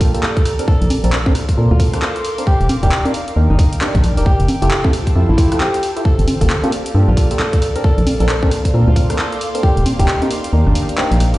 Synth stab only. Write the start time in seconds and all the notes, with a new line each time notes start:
0.01 A#3 F4 G4 A4
0.14 A#3 F4 G4 A4
0.59 C4 D4 A4 A#4
1.04 C4 D4 A4 A#4
1.26 C4 D4 A4 A#4
1.57 C4 D4 A4 A#4
1.80 C4 D4 A4 A#4
1.93 C4 D4 A4 A#4
2.38 C4 D4 A4 A#4
2.83 D4 D#4 G4 A#4
3.05 D4 D#4 G4 A#4
3.36 D4 D#4 G4 A#4
3.81 D4 D#4 G4 A#4
4.17 D4 D#4 G4 A#4
4.62 E4 F4 G4 A4
4.84 E4 F4 G4 A4
5.15 E4 F4 G4 A4
5.38 E4 F4 G4 A4
5.52 E4 F4 G4 A4
5.96 E4 F4 G4 A4
6.41 A#3 F4 G4 A4
6.63 A#3 F4 G4 A4
6.95 A#3 F4 G4 A4
7.17 A#3 F4 G4 A4
7.31 A#3 F4 G4 A4
7.76 C4 D4 A4 A#4
8.20 C4 D4 A4 A#4
8.43 C4 D4 A4 A#4
8.74 C4 D4 A4 A#4
8.96 C4 D4 A4 A#4
9.10 C4 D4 A4 A#4
9.55 C4 D4 A4 A#4
10.00 D4 D#4 G4 A#4
10.22 D4 D#4 G4 A#4
10.53 D4 D#4 G4 A#4
10.98 D4 D#4 G4 A#4
11.34 D4 D#4 G4 A#4